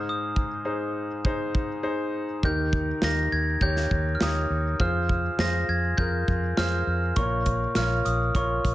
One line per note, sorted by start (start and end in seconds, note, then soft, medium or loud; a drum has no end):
0.00 0.61 G#2 medium
0.00 0.48 D#4 medium
0.00 0.48 G#4 medium
0.00 0.48 C5 medium
0.09 1.81 D#6 medium
0.36 kick medium
0.65 1.07 D#4 medium
0.65 1.07 G#4 medium
0.65 1.07 C5 medium
1.25 1.67 D#4 medium
1.25 1.67 G#4 medium
1.25 1.67 C5 medium
1.25 kick medium
1.55 kick medium
1.83 2.25 D#4 medium
1.83 2.25 G#4 medium
1.83 2.25 C5 medium
2.43 2.92 D#2 medium
2.43 3.28 D#3 soft
2.43 2.85 D#4 medium
2.43 2.85 G4 medium
2.43 2.85 A#4 medium
2.43 3.05 G6 medium
2.43 kick medium
2.73 kick medium
3.02 3.26 D#2 medium
3.02 3.44 D#4 medium
3.02 3.45 G4 medium
3.02 3.45 A#4 medium
3.02 3.34 A#6 medium
3.02 snare medium
3.32 3.56 D#2 medium
3.32 3.46 G#6 medium
3.61 3.85 D#2 medium
3.61 4.03 D#4 medium
3.61 4.04 G4 medium
3.61 4.04 C#5 medium
3.61 4.10 G6 medium
3.61 kick medium
3.76 snare soft
3.91 4.15 D#2 medium
3.91 kick medium
4.15 4.21 F6 medium
4.21 4.45 D#2 medium
4.21 4.63 D#4 medium
4.21 4.63 G4 soft
4.21 4.63 C#5 medium
4.21 4.83 D#6 medium
4.21 snare medium
4.50 4.74 D#2 medium
4.79 5.28 F2 medium
4.79 5.22 F4 medium
4.79 5.22 G#4 medium
4.79 5.22 C5 medium
4.79 5.41 F6 medium
4.79 kick medium
5.09 kick medium
5.38 5.63 F2 medium
5.38 5.81 F4 medium
5.38 5.81 G#4 medium
5.38 5.81 C5 medium
5.38 5.70 A#6 medium
5.38 snare medium
5.68 5.93 F2 medium
5.68 5.82 G#6 medium
5.97 6.22 F2 medium
5.97 6.40 F4 medium
5.97 6.40 G#4 medium
5.97 6.40 A#4 medium
5.97 6.53 G6 medium
5.97 kick medium
6.28 6.52 F2 medium
6.28 kick medium
6.57 6.82 F2 medium
6.57 7.00 F4 medium
6.57 7.00 G#4 medium
6.57 7.00 C5 medium
6.57 7.13 F6 medium
6.57 snare medium
6.87 7.11 F2 medium
7.16 7.65 A#1 medium
7.16 8.02 A#2 medium
7.16 7.59 F4 medium
7.16 7.59 A#4 medium
7.16 7.59 C#5 medium
7.16 7.72 C#6 medium
7.16 kick medium
7.16 closed hi-hat medium
7.46 kick medium
7.46 closed hi-hat medium
7.75 8.00 A#1 medium
7.75 8.18 F4 medium
7.75 8.18 A#4 medium
7.75 8.18 C#5 medium
7.75 8.06 F6 medium
7.75 snare medium
7.75 closed hi-hat medium
8.05 8.30 A#1 medium
8.05 8.36 D#6 medium
8.05 closed hi-hat medium
8.35 8.59 A#1 medium
8.35 8.75 F4 medium
8.35 8.75 A#4 medium
8.35 8.75 C#5 medium
8.35 8.75 C#6 medium
8.35 kick medium
8.35 closed hi-hat medium
8.65 8.75 A#1 medium
8.65 kick medium
8.65 closed hi-hat medium